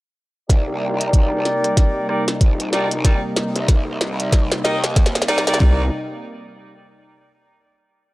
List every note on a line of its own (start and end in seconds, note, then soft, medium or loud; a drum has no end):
0.49 1.16 C2 medium
0.49 5.56 C3 medium
0.49 5.56 G3 medium
0.49 5.56 A#3 medium
0.49 5.56 D#4 medium
0.49 2.06 D#4 medium
0.49 2.06 G4 medium
0.49 2.06 A#4 medium
0.49 2.06 D5 medium
0.49 kick medium
0.49 snare soft
0.49 closed hi-hat medium
1.01 closed hi-hat medium
1.13 1.43 B1 medium
1.13 kick medium
1.13 closed hi-hat medium
1.45 snare medium
1.64 cross-stick soft
1.64 closed hi-hat medium
1.77 kick medium
1.77 snare medium
1.77 closed hi-hat medium
2.09 2.25 D#4 medium
2.09 2.25 G4 medium
2.09 2.25 A#4 medium
2.09 2.25 D5 medium
2.09 cross-stick medium
2.28 snare medium
2.28 closed hi-hat medium
2.41 2.89 A#1 medium
2.41 kick medium
2.41 closed hi-hat medium
2.60 closed hi-hat soft
2.73 2.89 D#4 medium
2.73 2.89 G4 medium
2.73 2.89 A#4 medium
2.73 2.89 D5 medium
2.73 snare medium
2.91 3.21 A#1 medium
2.91 closed hi-hat medium
3.05 3.21 D#4 medium
3.05 3.21 G4 medium
3.05 3.21 A#4 medium
3.05 3.21 D5 medium
3.05 kick medium
3.05 snare medium
3.05 closed hi-hat medium
3.36 snare medium
3.56 3.99 C2 loud
3.56 closed hi-hat medium
3.68 kick loud
3.68 snare medium
3.68 closed hi-hat medium
4.00 4.62 C2 medium
4.00 snare medium
4.20 closed hi-hat medium
4.32 kick medium
4.32 snare medium
4.32 closed hi-hat medium
4.52 snare medium
4.64 5.26 D#2 loud
4.64 4.81 D#4 medium
4.64 4.81 G4 medium
4.64 4.81 A#4 medium
4.64 4.81 D#5 loud
4.64 snare medium
4.84 snare medium
4.84 closed hi-hat medium
4.96 kick loud
4.96 snare loud
4.96 closed hi-hat medium
5.06 snare medium
5.15 snare medium
5.15 closed hi-hat soft
5.22 snare medium
5.29 5.44 C2 loud
5.29 5.43 D#4 loud
5.29 5.43 G4 medium
5.29 5.43 A#4 medium
5.29 5.43 D5 loud
5.29 snare loud
5.38 snare medium
5.47 5.58 C2 loud
5.47 5.59 D#4 medium
5.47 5.59 G4 medium
5.47 5.59 A#4 medium
5.47 5.59 D5 loud
5.47 snare loud
5.47 closed hi-hat medium
5.54 snare loud
5.60 5.90 C2 loud
5.60 5.90 C3 medium
5.60 5.90 G3 medium
5.60 5.90 A#3 medium
5.60 5.90 D#4 medium
5.60 5.85 D#4 medium
5.60 5.85 G4 medium
5.60 5.85 A#4 medium
5.60 5.85 D5 medium
5.60 kick loud
5.60 snare loud